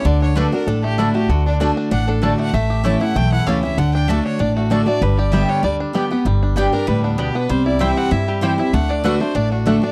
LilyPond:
<<
  \new Staff \with { instrumentName = "Fiddle" } { \time 4/4 \key g \lydian \tempo 4 = 194 d''8 cis''8 b'8 bes'8 a'8 g'8 e'8 g'8 | fis'8 d'8 r4 fis''8 a'8 d''8 fis''8 | e''4. fis''8 g''8 fis''8 f''8 e''8 | fis''8 g''8 e''8 cis''8 d''8 fis'8 a'8 d''8 |
b'8 d''8 e''8 cis''8 d''8 r4. | \key g \major r4. bes'8 b'8 d'8 g'8 b'8 | c''8 d''8 e''8 fis''8 e''8 g'8 c''8 e''8 | fis''8 d''8 b'8 c''8 d''8 fis'8 a'8 d''8 | }
  \new Staff \with { instrumentName = "Mandolin" } { \time 4/4 \key g \lydian r4 <a fis' d'' a''>8 r4. <a fis' d'' a''>8 r8 | r4 <a fis' d'' a''>8 r4. <a fis' d'' a''>8 r8 | r4 <a e' cis'' a''>8 r4. <a e' cis'' a''>8 r8 | r4 <a fis' d'' a''>8 r4. <a fis' d'' a''>8 r8 |
r4 <b g' d'' g''>8 r4. <b g' d'' g''>8 r8 | \key g \major r4 <b g' d'' g''>8 r4. <b g' d'' g''>8 r8 | r4 <c' e' c'' g''>8 r4. <c' e' c'' g''>8 r8 | r4 <a fis' d'' fis''>8 r4. <a fis' d'' fis''>8 r8 | }
  \new Staff \with { instrumentName = "Five-string banjo" } { \time 4/4 \key g \lydian d8 d'8 d'8 d'8 d'8 a8 d'8 a8 | d8 d'8 d'8 d'8 d'8 d'8 d'8 a8 | a8 g'8 a8 e'8 a8 e'8 g'8 cis'8 | d8 d'8 d'8 d'8 d'8 a8 d'8 a8 |
g8 g'8 g8 d'8 g8 d'8 g'8 b8 | \key g \major g8 d'8 g'8 d'8 g8 b8 d'8 b8 | g8 e'8 g8 c'8 e'8 g8 g'8 e'8 | a8 d'8 d'8 a8 d'8 d'8 a8 d'8 | }
  \new Staff \with { instrumentName = "Steel-string acoustic guitar" } { \time 4/4 \key g \lydian << { r4 <d a d' fis'>8 <d' fis'>8 r4 <d a d' fis'>8 <d' fis'>8 | r4 <d a d' fis'>4 r4 <d a d' fis'>4 | r4 <e a cis' e'>8 <cis' e'>8 r4 <e a cis' e'>8 <cis' e'>8 | r4 <d a d' fis'>4 r4 <d a d' fis'>8 <d' fis'>8 |
r4 <d g b g'>4 r4 <d g b g'>8 <b g'>8 | \key g \major r4 <g b d' g'>8 <d' g'>8 r2 | r4 <e g c' e'>4 r4 <e g c' e'>8 <c' e'>8 | r4 <d a d' fis'>8 <d' fis'>8 r4 <d a d' fis'>8 <d' fis'>8 | } \\ { d2 a,2 | d2 a,2 | a,2 e,2 | d2 a,2 |
g,2 d2 | g,2 a,4 b,4 | c2 g,2 | d2 a,2 | } >> }
  \new Staff \with { instrumentName = "Upright bass" } { \clef bass \time 4/4 \key g \lydian d,2 a,,2 | d,2 a,,2 | a,,2 b,,4 cis,4 | d,2 a,,2 |
g,,2 d,4 r4 | \key g \major g,,2 d,2 | c,2 g,2 | d,2 a,,2 | }
>>